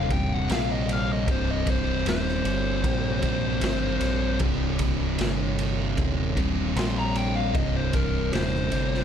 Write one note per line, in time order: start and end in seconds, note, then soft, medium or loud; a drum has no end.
0.00 0.47 D#1 loud
0.00 0.14 C2 loud
0.00 0.12 F5 medium
0.10 0.49 G2 medium
0.10 0.53 C3 medium
0.10 0.34 G5 loud
0.10 kick medium
0.10 ride medium
0.14 0.48 C2 medium
0.34 0.51 F#5 medium
0.49 1.26 A#1 loud
0.49 1.27 C2 medium
0.49 1.26 G2 medium
0.49 0.70 F5 loud
0.49 snare loud
0.49 ride loud
0.53 1.31 C3 medium
0.72 0.92 D#5 medium
0.89 1.10 F5 loud
0.89 ride medium
1.12 1.30 D#5 loud
1.27 2.04 C1 medium
1.27 3.26 C2 medium
1.27 3.22 G2 loud
1.27 3.22 C3 loud
1.27 1.49 C5 medium
1.27 kick loud
1.27 ride loud
1.51 1.68 D#5 medium
1.67 2.07 C5 loud
1.67 kick loud
1.67 ride medium
2.05 2.44 D#1 medium
2.05 4.38 C5 loud
2.05 snare loud
2.05 ride loud
2.28 snare soft
2.45 2.83 G1 medium
2.45 ride medium
2.84 3.60 A#1 loud
2.84 kick medium
2.84 ride loud
3.22 3.61 C2 medium
3.22 3.61 G2 medium
3.22 3.65 C3 medium
3.22 kick medium
3.22 ride medium
3.61 4.00 G#1 loud
3.61 4.39 C2 medium
3.61 4.39 G2 medium
3.61 snare loud
3.61 ride loud
3.65 4.42 C3 loud
4.00 4.39 A#1 loud
4.00 ride medium
4.39 5.17 C1 loud
4.39 6.39 C2 loud
4.39 6.35 G2 loud
4.39 6.36 C3 loud
4.39 kick loud
4.39 ride loud
4.79 kick medium
4.79 ride medium
5.18 5.95 G1 medium
5.18 snare loud
5.18 ride loud
5.59 ride medium
5.97 6.74 D#1 loud
5.97 kick medium
5.97 ride medium
6.36 6.75 C2 medium
6.36 6.75 G2 medium
6.36 6.79 C3 loud
6.36 kick medium
6.36 ride medium
6.75 7.52 A#1 loud
6.75 7.52 C2 medium
6.75 7.53 G2 medium
6.75 6.96 C6 loud
6.75 ride loud
6.79 7.56 C3 medium
6.79 snare loud
6.99 7.17 A#5 loud
7.16 7.35 G5 loud
7.16 ride medium
7.36 7.56 F5 medium
7.53 8.31 C1 loud
7.53 9.04 C2 loud
7.53 9.04 G2 loud
7.53 9.04 C3 loud
7.53 7.75 D#5 medium
7.53 kick loud
7.53 ride loud
7.76 7.95 C5 medium
7.93 8.33 A#4 medium
7.93 kick medium
7.93 ride medium
8.33 8.71 D#1 loud
8.33 9.04 C5 loud
8.33 snare loud
8.33 ride loud
8.55 snare soft
8.72 9.04 G1 medium
8.72 ride medium
8.94 snare soft